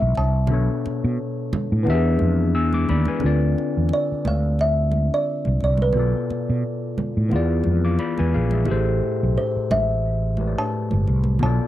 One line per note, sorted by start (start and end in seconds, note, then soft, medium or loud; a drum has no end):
0.00 0.15 B1 medium
0.00 0.44 C3 medium
0.00 0.45 C4 medium
0.00 0.46 E4 medium
0.00 0.47 C5 medium
0.00 0.48 D5 medium
0.00 0.14 E5 medium
0.15 0.51 C2 medium
0.15 1.49 A5 loud
0.15 muted conga soft
0.46 1.81 B2 medium
0.46 1.82 B3 medium
0.46 1.83 D4 medium
0.46 low conga medium
0.51 0.67 B1 medium
0.51 1.84 A4 medium
0.51 1.85 C#5 medium
0.86 muted fretless electric bass stroke soft
0.86 muted conga soft
1.04 1.17 B2 loud
1.53 muted fretless electric bass stroke medium
1.53 muted conga soft
1.53 high conga medium
1.53 low conga medium
1.72 1.88 A2 medium
1.83 2.17 E2 loud
1.83 3.18 E3 medium
1.83 3.19 B3 medium
1.83 3.19 D4 medium
1.83 muted conga soft
1.88 1.94 G4 medium
1.88 2.54 E5 medium
1.95 3.24 G#4 medium
2.19 2.56 F2 medium
2.19 high conga medium
2.55 2.86 E2 medium
2.55 2.72 G#5 medium
2.55 2.72 E6 medium
2.73 2.88 D6 medium
2.73 high conga medium
2.89 3.06 D#2 medium
2.89 3.07 D5 medium
2.89 3.06 B5 medium
2.89 low conga medium
3.05 3.40 B4 medium
3.05 3.40 G#5 medium
3.05 high conga medium
3.19 5.89 D3 medium
3.19 5.90 C4 medium
3.19 5.91 D4 medium
3.19 muted conga soft
3.19 low conga medium
3.24 3.54 D2 medium
3.24 5.92 F4 medium
3.24 5.93 D5 medium
3.58 muted conga soft
3.77 3.90 E2 medium
3.89 muted conga soft
3.93 4.27 D5 medium
4.12 muted fretless electric bass stroke soft
4.25 5.08 D2 medium
4.25 4.61 F5 medium
4.25 muted conga soft
4.25 high conga medium
4.25 low conga medium
4.59 5.14 E5 medium
4.59 muted conga soft
4.92 muted conga soft
4.92 high conga medium
5.14 5.63 D5 medium
5.45 5.60 C2 medium
5.45 high conga medium
5.60 5.97 C2 medium
5.60 5.80 D5 medium
5.60 muted conga soft
5.77 high conga medium
5.82 7.13 B4 medium
5.92 7.27 B2 medium
5.92 7.28 B3 medium
5.92 7.29 F4 medium
5.92 low conga medium
5.97 6.13 B1 medium
5.97 7.29 A4 medium
5.97 7.31 D5 medium
6.30 muted fretless electric bass stroke soft
6.30 muted conga soft
6.50 6.62 B2 medium
6.98 muted fretless electric bass stroke soft
6.98 high conga medium
6.98 low conga medium
7.17 7.33 A2 medium
7.29 7.62 E2 loud
7.29 8.63 E3 medium
7.29 8.64 B3 medium
7.29 8.65 F4 medium
7.29 muted conga soft
7.34 7.66 G#4 medium
7.34 7.67 D5 medium
7.64 7.97 F2 medium
7.64 high conga medium
7.85 7.99 F5 soft
7.85 7.99 D6 medium
7.99 8.17 D5 medium
7.99 8.17 B5 medium
7.99 muted conga soft
8.18 8.37 E2 medium
8.18 8.33 B4 medium
8.18 8.33 G#5 medium
8.18 high conga medium
8.34 8.65 A#1 medium
8.34 8.52 G#4 medium
8.34 8.52 F5 medium
8.51 8.85 G#4 soft
8.51 8.85 E5 medium
8.51 high conga soft
8.64 10.33 A2 medium
8.64 10.34 A3 medium
8.64 10.35 G4 medium
8.64 muted conga soft
8.64 low conga medium
8.70 9.00 A1 medium
8.70 10.36 A4 medium
8.70 10.36 C5 medium
9.23 9.36 B1 medium
9.38 9.52 C5 medium
9.56 muted fretless electric bass stroke soft
9.71 10.53 A1 medium
9.71 10.60 E5 medium
9.71 muted conga soft
9.71 high conga medium
9.71 low conga medium
10.37 11.40 A2 soft
10.37 11.40 A3 soft
10.37 11.41 G4 soft
10.37 11.41 B4 soft
10.37 10.46 C#5 soft
10.37 high conga medium
10.47 11.44 D5 medium
10.58 11.42 A5 loud
10.91 11.06 G1 medium
10.91 high conga medium
11.07 11.38 C2 medium
11.07 muted conga soft
11.24 high conga medium
11.39 11.58 B1 loud
11.39 11.67 B2 medium
11.39 11.67 B3 medium
11.39 11.67 F4 medium
11.39 low conga medium
11.43 11.67 A4 medium
11.43 11.67 D5 medium
11.43 11.67 A5 medium